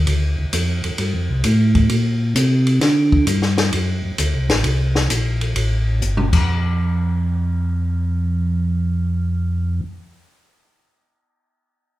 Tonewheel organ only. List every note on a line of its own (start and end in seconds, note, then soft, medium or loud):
0.07 0.36 D2 medium
0.38 0.46 D2 soft
0.53 0.82 F2 medium
0.84 0.91 F2 soft
0.99 1.13 G2 medium
1.14 1.29 F2 medium
1.30 1.44 C2 medium
1.45 1.89 A2 medium
1.90 2.34 A#2 medium
2.35 2.80 C3 medium
2.81 3.26 D3 medium
3.26 3.71 G2 medium
3.73 4.02 F#2 medium
4.04 4.12 F#2 soft
4.19 4.34 D2 medium
4.34 4.49 C2 medium
4.49 4.63 A1 medium
4.64 5.09 C2 medium
5.10 5.55 A#1 medium
5.56 6.01 A1 medium
6.02 6.32 G1 medium
6.33 9.81 F2 medium